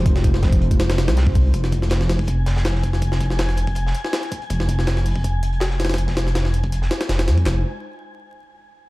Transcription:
<<
  \new Staff \with { instrumentName = "Synth texture" } { \time 4/4 \key f \minor \tempo 4 = 162 r1 | <aes'' aes'''>1~ | <aes'' aes'''>1~ | <aes'' aes'''>1~ |
<aes'' aes'''>1 | r1 | }
  \new Staff \with { instrumentName = "Analog synth pad" } { \time 4/4 \key f \minor <aes ees' f' c''>4. <aes ees' f' c''>4.~ <aes ees' f' c''>16 <aes ees' f' c''>16 <aes ees' f' c''>8 | r1 | r1 | r1 |
r1 | <aes ees' f' c''>8 r2. r8 | }
  \new Staff \with { instrumentName = "Detuned saw bass" } { \clef bass \time 4/4 \key f \minor f,,4.~ f,,16 f,,4 c,4~ c,16 | f,,4.~ f,,16 f,,8. f,,4. | f,,4.~ f,,16 f,,8. r4. | f,,4.~ f,,16 f,,8. f,,4. |
f,,4.~ f,,16 f,,8. r8 f,,8 f,8 | f,,8 r2. r8 | }
  \new DrumStaff \with { instrumentName = "Drums" } \drummode { \time 4/4 <hh bd>16 sn16 <hh bd>16 sn16 <hh bd sn>16 <hh bd>16 hh16 <hh bd>16 <hh sn>16 <hh sn>16 <hh sn>16 <hh sn>16 <hh sn>16 bd16 <hh hho bd>8 | <hh bd>16 sn16 <hh bd>16 sn16 <hh sn>16 sn16 <hh hho sn>16 bd16 <hh bd>8 <hh sn>16 <hh sn>16 <hh sn>16 sn16 <hh bd>16 <hh sn>16 | <hh bd>16 sn16 <hh bd>16 sn16 <hh sn>16 sn16 hh16 <hh bd>16 hh16 sn16 hh16 sn16 <hh sn>16 hh16 <hh bd>16 hh16 | <hh bd>16 sn16 <hh bd>16 sn16 <hh sn>16 sn16 <hh hho>16 bd16 <hh bd>8 hh16 hh16 <hh sn>16 sn16 <hh sn>32 <hh sn>32 <hh sn>32 <hh sn>32 |
hh16 <bd sn>16 <hh sn>16 sn16 <hh sn>16 sn16 hh16 <hh bd>16 hh16 sn16 <hh sn>16 <hh sn>16 <hh sn>16 <hh sn>16 <hh sn>16 <hh bd>16 | <hc sn>4 r4 r4 r4 | }
>>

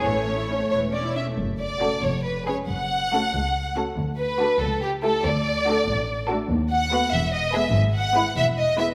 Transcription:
<<
  \new Staff \with { instrumentName = "Violin section" } { \time 6/8 \key a \major \tempo 4. = 95 cis''2~ cis''8 r8 | \key fis \minor r8 d''4 cis''8 b'8 cis''8 | fis''2~ fis''8 r8 | r8 b'4 a'8 g'8 a'8 |
d''2~ d''8 r8 | \key e \major r8 fis''4 e''8 dis''8 e''8 | r8 fis''4 e''8 dis''8 e''8 | }
  \new Staff \with { instrumentName = "Violin section" } { \time 6/8 \key a \major cis''4. cis''8 d''8 e''8 | \key fis \minor r4 <fis' a'>8 r4 <gis' b'>8 | r4 <fis' a'>8 r4 <fis' a'>8 | r4 <fis' a'>8 r4 <g' a'>8 |
r4 <fis' a'>8 r4 <fis' a'>8 | \key e \major r4 <fis' b'>8 r4 <gis' b'>8 | r4 <e' b'>8 r4 <e' b'>8 | }
  \new Staff \with { instrumentName = "Viola section" } { \time 6/8 \key a \major << { e16 a16 cis'16 e'16 cis'16 a16 e16 a16 cis'16 e'16 cis'16 a16 | \key fis \minor r4 cis'8 r4 cis'8 | r4 cis'8 r4 cis'8 | r4 d'8 r4 e'8 |
r4 d'8 r4 d'8 | \key e \major r4 b8 r4 b8 | r4 b8 r4 b8 | } \\ { a2~ a8 r8 | r4 a8 r4 gis8 | r4 a8 r4 a8 | r4 a8 r4 a8 |
r4 a8 r4 a8 | r4 a8 r4 gis8 | r4 gis8 r4 gis8 | } >> }
  \new Staff \with { instrumentName = "Cello section" } { \clef bass \time 6/8 \key a \major a4. r4. | \key fis \minor fis,4. eis,4. | fis,4. cis,4. | d,4. cis,4. |
d,4. a,4. | \key e \major dis,4. e,4. | gis,4. e,4. | }
  \new Staff \with { instrumentName = "Double bass section" } { \clef bass \time 6/8 \key a \major a,,4. e,,4. | \key fis \minor fis,,4. eis,,4. | fis,,4. cis,4. | d,4. cis,4. |
d,4. a,,4. | \key e \major dis,4. e,,4. | gis,,4. e,,4. | }
>>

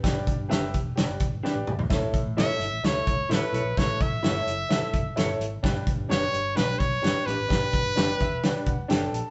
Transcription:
<<
  \new Staff \with { instrumentName = "Trumpet" } { \time 4/4 \key g \lydian \tempo 4 = 129 r1 | r4 e''4 cis''4 b'4 | cis''8 e''2. r8 | r4 cis''4 b'8 cis''4 b'8~ |
b'2. r4 | }
  \new Staff \with { instrumentName = "Grand piano" } { \time 4/4 \key g \lydian <g' b' d''>8 r8 <g' b' e''>8 r8 <g' b' d''>8 r8 <g' b' d''>8 r8 | <e' a' cis''>8 r8 <e' a' cis''>8 r8 <e' a' cis''>8 r8 <e' a' b'>8 r8 | <e' a' b'>8 r8 <e' a' cis''>8 r8 <e' a' e''>8 r8 <e' a' cis''>8 r8 | <d' g' b'>8 r8 <d' g' cis''>8 r8 <d' g' b'>8 r8 <d' g' b'>8 r8 |
<d' g' b'>8 r8 <d' g' b'>8 e''8 <d' g' b' d''>8 fis''8 <d' g' a' g''>8 a''8 | }
  \new Staff \with { instrumentName = "Grand piano" } { \clef bass \time 4/4 \key g \lydian g,4. r2 r8 | a,4. r2 r8 | a,4. r2 r8 | g,4. r2 r8 |
g,4. r2 r8 | }
  \new Staff \with { instrumentName = "Clean electric guitar" } { \time 4/4 \key g \lydian r4 <d' g' b'>8 r4. <d' g' b'>8 r8 | r4 <e' a' cis''>8 r4. <e' a' cis''>8 <e' a' cis''>8 | r4 <e' a' cis''>8 r4. <e' a' cis''>8 r8 | r4 <d' g' b'>8 r4. <d' g' b'>8 <d' g' b'>8 |
r4 <d' g' b'>8 r4. <d' g' b'>8 r8 | }
  \new Staff \with { instrumentName = "Fingered electric bass" } { \clef bass \time 4/4 \key g \lydian g,,8 r16 g,,16 fis,,8 e,,8 e,,16 fis,,16 r16 g,,16 r16 a,,16 b,,16 bes,,16 | a,,8 r16 a,,8 r16 g,,16 a,,16 cis,8 cis,8 a,,16 r16 b,,16 bes,,16 | a,,8 r16 a,,16 g,,8 fis,,8 r8 fis,,8 g,,8 gis,,8 | g,,8 r16 g,,16 fis,,8 g,,8 b,,8 b,,8 g,,16 r16 a,,16 gis,,16 |
g,,8 r16 g,,16 fis,,8 e,,8 r8 e,,8 fis,,8 bes,,16 r16 | }
  \new DrumStaff \with { instrumentName = "Drums" } \drummode { \time 4/4 <hh bd sn>8 <hh bd>8 <hh sn>8 <hh bd>8 <hh sn>8 <hh bd>8 sn8 toml16 tomfh16 | <hh bd sn>8 <hh bd>8 <hh sn>8 hh8 <hh sn>8 <hh bd>8 <hh sn>8 hh8 | <hh bd sn>8 <hh bd>8 <hh sn>8 hh8 <hh sn>8 <hh bd>8 <hh sn>8 hh8 | <hh bd sn>8 <hh bd>8 <hh sn>8 hh8 <hh sn>8 <hh bd>8 <hh sn>8 hh8 |
<hh bd sn>8 <hh bd>8 <hh sn>8 <hh bd>8 <hh sn>8 <hh bd>8 <hh sn>8 hh8 | }
>>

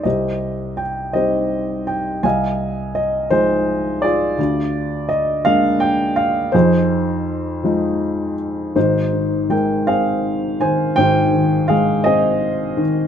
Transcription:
<<
  \new Staff \with { instrumentName = "Upright piano" } { \time 6/8 \key f \dorian \tempo 4. = 55 << { ees''4 g''8 ees''4 g''8 | aes''4 ees''8 c''4 d''8~ | d''4 ees''8 f''8 g''8 f''8 | c''2~ c''8 r8 |
\key f \minor c''4 g''8 f''4 aes''8 | g''4 f''8 ees''4 r8 | } \\ { <g' c''>4. <g' c''>4. | <ees'' f''>4. aes'4 <f' aes'>8~ | <f' aes'>4 r2 | <ees' aes'>2~ <ees' aes'>8 r8 |
ees'4 bes'8 aes'4 c''8 | c''4 aes'8 aes'4 r8 | } >> }
  \new Staff \with { instrumentName = "Upright piano" } { \clef bass \time 6/8 \key f \dorian c,4. <g c' ees'>4. | c,4. <f aes ees'>4. | d,4. <aes bes d'>4. | f,4. <f aes ees'>4. |
\key f \minor <aes,, aes,>8 ees8 aes8 c'4 ees8 | <aes,, aes,>8 ees8 aes8 c'4 ees8 | }
>>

